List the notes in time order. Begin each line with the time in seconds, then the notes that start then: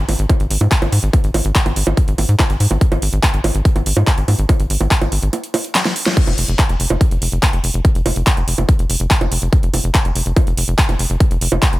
0.09 G#1, open hi-hat, high bongo
0.19 G#1, closed hi-hat
0.29 kick, closed hi-hat, high bongo
0.40 G#1, closed hi-hat
0.50 G#1, open hi-hat
0.61 G#2, closed hi-hat, high bongo
0.71 kick, clap, closed hi-hat
0.82 G#1, closed hi-hat, high bongo
0.92 G#2, open hi-hat
1.03 G#1, closed hi-hat
1.13 kick, closed hi-hat, high bongo
1.24 G#1, closed hi-hat
1.34 G#1, open hi-hat, high bongo
1.45 G#1, closed hi-hat
1.55 kick, clap, closed hi-hat
1.66 G#1, closed hi-hat, high bongo
1.76 G#1, open hi-hat
1.87 G#1, high bongo
1.97 kick, closed hi-hat
2.08 G#1, closed hi-hat
2.18 G#1, open hi-hat, high bongo
2.29 G#2, closed hi-hat
2.39 kick, clap, closed hi-hat, high bongo
2.50 G#1, closed hi-hat
2.60 G#2, open hi-hat
2.71 G#1, closed hi-hat, high bongo
2.81 kick, closed hi-hat
2.92 G#1, closed hi-hat, high bongo
3.02 G#1, open hi-hat
3.13 G#1, closed hi-hat
3.23 kick, clap, closed hi-hat, high bongo
3.34 G#1, closed hi-hat
3.44 G#1, open hi-hat, high bongo
3.55 G#1, closed hi-hat
3.65 kick, closed hi-hat
3.76 G#1, closed hi-hat, high bongo
3.86 G#1, open hi-hat
3.97 G#2, closed hi-hat, high bongo
4.07 kick, clap, closed hi-hat
4.18 G#1, closed hi-hat
4.28 G#2, open hi-hat, high bongo
4.39 G#1, closed hi-hat
4.49 kick, closed hi-hat, high bongo
4.60 G#1, closed hi-hat
4.70 G#1, open hi-hat
4.81 G#1, closed hi-hat, high bongo
4.91 kick, clap, closed hi-hat
5.02 G#1, closed hi-hat, high bongo
5.12 G#1, open hi-hat
5.23 G#1, closed hi-hat
5.33 closed hi-hat, high bongo
5.44 closed hi-hat
5.54 open hi-hat, high bongo
5.64 closed hi-hat
5.75 snare, clap, closed hi-hat
5.85 snare, closed hi-hat, high bongo
5.96 open hi-hat
6.06 snare, high bongo
6.17 kick, closed hi-hat, crash
6.27 F1, closed hi-hat, high bongo
6.38 F1, open hi-hat
6.48 F1, closed hi-hat
6.59 kick, clap, closed hi-hat
6.69 F1, closed hi-hat
6.80 F1, open hi-hat
6.90 F1, high bongo
7.01 kick, closed hi-hat
7.11 F1, closed hi-hat
7.22 F1, open hi-hat
7.32 F1, closed hi-hat
7.43 kick, clap, closed hi-hat, high bongo
7.53 F1, closed hi-hat
7.64 F1, open hi-hat
7.74 F1, closed hi-hat
7.85 kick, closed hi-hat
7.95 F1, closed hi-hat
8.06 F1, open hi-hat, high bongo
8.16 F1, closed hi-hat
8.27 kick, clap, closed hi-hat
8.37 F1, closed hi-hat
8.48 F1, open hi-hat
8.58 F1, closed hi-hat, high bongo
8.69 kick, closed hi-hat
8.79 F1, closed hi-hat
8.90 F1, open hi-hat
9.00 F1, closed hi-hat
9.11 kick, clap, closed hi-hat
9.21 F1, closed hi-hat, high bongo
9.32 F1, open hi-hat
9.42 F1, closed hi-hat
9.53 kick, closed hi-hat
9.63 F1, closed hi-hat
9.74 F1, open hi-hat, high bongo
9.84 F1, closed hi-hat
9.95 kick, clap, closed hi-hat
10.05 F1, closed hi-hat
10.15 F1, open hi-hat
10.26 F1, closed hi-hat
10.36 kick, closed hi-hat, high bongo
10.47 F1, closed hi-hat
10.57 F1, open hi-hat
10.68 F1, closed hi-hat
10.78 kick, clap, closed hi-hat
10.89 F1, closed hi-hat, high bongo
10.99 F1, open hi-hat
11.10 F1, closed hi-hat
11.20 kick, closed hi-hat
11.31 F1, closed hi-hat
11.41 F1, open hi-hat
11.52 F1, high bongo
11.62 kick, clap, closed hi-hat
11.73 F1, closed hi-hat